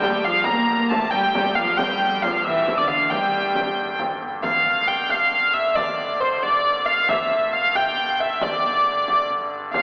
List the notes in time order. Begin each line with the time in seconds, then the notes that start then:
Already playing: G2 D3 G3 G5
0.02 frame drum
0.24 F3 F5, frame drum
0.45 A#3 A#5, frame drum
0.69 A#3
0.89 A3 A5, frame drum
1.11 G3 G5
1.35 G3, frame drum
1.55 F3 F5, frame drum
1.77 G3 G5, frame drum
2.23 F3 F5, frame drum
2.44 E3 E5
2.68 frame drum
2.73 E3
2.78 D3 D5
2.88 F5, frame drum
3.10 G3 G5, frame drum
3.55 frame drum
3.99 frame drum
4.43 G2 D3 F5, frame drum
4.66 frame drum
4.88 G5
5.09 F5, frame drum
5.32 frame drum
5.54 E5
5.76 D5, frame drum
5.99 frame drum
6.21 C5
6.43 D5, frame drum
6.65 frame drum
6.86 F5
7.09 E5, frame drum
7.31 frame drum
7.53 F5
7.75 G5, frame drum
7.98 frame drum
8.20 E5
8.41 D5, frame drum
8.87 frame drum
9.08 frame drum
9.73 G2 D3 F5, frame drum